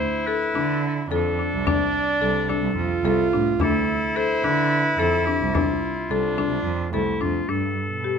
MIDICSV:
0, 0, Header, 1, 6, 480
1, 0, Start_track
1, 0, Tempo, 556070
1, 1429, Time_signature, 7, 3, 24, 8
1, 7067, End_track
2, 0, Start_track
2, 0, Title_t, "Clarinet"
2, 0, Program_c, 0, 71
2, 0, Note_on_c, 0, 72, 102
2, 232, Note_on_c, 0, 71, 91
2, 245, Note_off_c, 0, 72, 0
2, 710, Note_off_c, 0, 71, 0
2, 977, Note_on_c, 0, 69, 83
2, 1438, Note_on_c, 0, 74, 99
2, 1451, Note_off_c, 0, 69, 0
2, 2150, Note_on_c, 0, 69, 77
2, 2162, Note_off_c, 0, 74, 0
2, 2868, Note_off_c, 0, 69, 0
2, 3133, Note_on_c, 0, 69, 95
2, 3595, Note_on_c, 0, 72, 103
2, 3607, Note_off_c, 0, 69, 0
2, 3841, Note_on_c, 0, 71, 96
2, 3854, Note_off_c, 0, 72, 0
2, 4303, Note_on_c, 0, 69, 86
2, 4316, Note_off_c, 0, 71, 0
2, 4541, Note_on_c, 0, 67, 77
2, 4554, Note_off_c, 0, 69, 0
2, 4786, Note_on_c, 0, 65, 82
2, 4799, Note_off_c, 0, 67, 0
2, 5972, Note_off_c, 0, 65, 0
2, 5978, Note_on_c, 0, 64, 88
2, 6229, Note_on_c, 0, 65, 88
2, 6242, Note_off_c, 0, 64, 0
2, 6468, Note_on_c, 0, 69, 91
2, 6481, Note_off_c, 0, 65, 0
2, 7067, Note_off_c, 0, 69, 0
2, 7067, End_track
3, 0, Start_track
3, 0, Title_t, "Viola"
3, 0, Program_c, 1, 41
3, 0, Note_on_c, 1, 64, 92
3, 917, Note_off_c, 1, 64, 0
3, 955, Note_on_c, 1, 62, 92
3, 2356, Note_off_c, 1, 62, 0
3, 2396, Note_on_c, 1, 65, 96
3, 3105, Note_on_c, 1, 64, 105
3, 3118, Note_off_c, 1, 65, 0
3, 5269, Note_on_c, 1, 62, 84
3, 5282, Note_off_c, 1, 64, 0
3, 5977, Note_off_c, 1, 62, 0
3, 5982, Note_on_c, 1, 57, 60
3, 6431, Note_off_c, 1, 57, 0
3, 7067, End_track
4, 0, Start_track
4, 0, Title_t, "Marimba"
4, 0, Program_c, 2, 12
4, 0, Note_on_c, 2, 62, 81
4, 177, Note_off_c, 2, 62, 0
4, 237, Note_on_c, 2, 69, 70
4, 445, Note_off_c, 2, 69, 0
4, 478, Note_on_c, 2, 62, 70
4, 896, Note_off_c, 2, 62, 0
4, 963, Note_on_c, 2, 69, 77
4, 1168, Note_off_c, 2, 69, 0
4, 1200, Note_on_c, 2, 62, 62
4, 1406, Note_off_c, 2, 62, 0
4, 1441, Note_on_c, 2, 62, 83
4, 1858, Note_off_c, 2, 62, 0
4, 1912, Note_on_c, 2, 69, 65
4, 2121, Note_off_c, 2, 69, 0
4, 2154, Note_on_c, 2, 62, 73
4, 2574, Note_off_c, 2, 62, 0
4, 2635, Note_on_c, 2, 69, 75
4, 2843, Note_off_c, 2, 69, 0
4, 2877, Note_on_c, 2, 62, 68
4, 3084, Note_off_c, 2, 62, 0
4, 3118, Note_on_c, 2, 62, 83
4, 3536, Note_off_c, 2, 62, 0
4, 3593, Note_on_c, 2, 69, 71
4, 3802, Note_off_c, 2, 69, 0
4, 3835, Note_on_c, 2, 62, 69
4, 4254, Note_off_c, 2, 62, 0
4, 4313, Note_on_c, 2, 69, 74
4, 4521, Note_off_c, 2, 69, 0
4, 4549, Note_on_c, 2, 62, 68
4, 4760, Note_off_c, 2, 62, 0
4, 4789, Note_on_c, 2, 62, 79
4, 5211, Note_off_c, 2, 62, 0
4, 5274, Note_on_c, 2, 69, 73
4, 5482, Note_off_c, 2, 69, 0
4, 5508, Note_on_c, 2, 62, 76
4, 5931, Note_off_c, 2, 62, 0
4, 5989, Note_on_c, 2, 69, 73
4, 6200, Note_off_c, 2, 69, 0
4, 6223, Note_on_c, 2, 62, 72
4, 6436, Note_off_c, 2, 62, 0
4, 6463, Note_on_c, 2, 62, 66
4, 6888, Note_off_c, 2, 62, 0
4, 6943, Note_on_c, 2, 67, 58
4, 7067, Note_off_c, 2, 67, 0
4, 7067, End_track
5, 0, Start_track
5, 0, Title_t, "Cello"
5, 0, Program_c, 3, 42
5, 472, Note_on_c, 3, 50, 91
5, 917, Note_off_c, 3, 50, 0
5, 951, Note_on_c, 3, 41, 82
5, 1173, Note_off_c, 3, 41, 0
5, 1318, Note_on_c, 3, 36, 81
5, 1537, Note_off_c, 3, 36, 0
5, 1909, Note_on_c, 3, 36, 82
5, 2132, Note_off_c, 3, 36, 0
5, 2263, Note_on_c, 3, 36, 85
5, 2374, Note_off_c, 3, 36, 0
5, 2379, Note_on_c, 3, 41, 83
5, 2495, Note_off_c, 3, 41, 0
5, 2623, Note_on_c, 3, 36, 97
5, 2737, Note_off_c, 3, 36, 0
5, 2869, Note_on_c, 3, 45, 76
5, 3091, Note_off_c, 3, 45, 0
5, 3107, Note_on_c, 3, 38, 91
5, 3330, Note_off_c, 3, 38, 0
5, 3822, Note_on_c, 3, 50, 100
5, 4271, Note_off_c, 3, 50, 0
5, 4304, Note_on_c, 3, 41, 83
5, 4529, Note_off_c, 3, 41, 0
5, 4669, Note_on_c, 3, 36, 85
5, 4891, Note_off_c, 3, 36, 0
5, 5264, Note_on_c, 3, 36, 81
5, 5489, Note_off_c, 3, 36, 0
5, 5610, Note_on_c, 3, 36, 85
5, 5727, Note_off_c, 3, 36, 0
5, 5732, Note_on_c, 3, 41, 86
5, 5851, Note_off_c, 3, 41, 0
5, 5983, Note_on_c, 3, 36, 81
5, 6097, Note_off_c, 3, 36, 0
5, 6218, Note_on_c, 3, 41, 77
5, 6446, Note_off_c, 3, 41, 0
5, 6460, Note_on_c, 3, 43, 78
5, 6687, Note_off_c, 3, 43, 0
5, 6818, Note_on_c, 3, 47, 63
5, 7067, Note_off_c, 3, 47, 0
5, 7067, End_track
6, 0, Start_track
6, 0, Title_t, "Frame drum"
6, 476, Note_on_c, 9, 64, 48
6, 562, Note_off_c, 9, 64, 0
6, 956, Note_on_c, 9, 64, 44
6, 1042, Note_off_c, 9, 64, 0
6, 1439, Note_on_c, 9, 64, 67
6, 1525, Note_off_c, 9, 64, 0
6, 2155, Note_on_c, 9, 64, 44
6, 2241, Note_off_c, 9, 64, 0
6, 2629, Note_on_c, 9, 64, 43
6, 2715, Note_off_c, 9, 64, 0
6, 3103, Note_on_c, 9, 64, 60
6, 3190, Note_off_c, 9, 64, 0
6, 3829, Note_on_c, 9, 64, 47
6, 3915, Note_off_c, 9, 64, 0
6, 4307, Note_on_c, 9, 64, 47
6, 4394, Note_off_c, 9, 64, 0
6, 4788, Note_on_c, 9, 64, 64
6, 4874, Note_off_c, 9, 64, 0
6, 5030, Note_on_c, 9, 64, 18
6, 5116, Note_off_c, 9, 64, 0
6, 5507, Note_on_c, 9, 64, 50
6, 5594, Note_off_c, 9, 64, 0
6, 5982, Note_on_c, 9, 64, 49
6, 6068, Note_off_c, 9, 64, 0
6, 6227, Note_on_c, 9, 64, 19
6, 6314, Note_off_c, 9, 64, 0
6, 7067, End_track
0, 0, End_of_file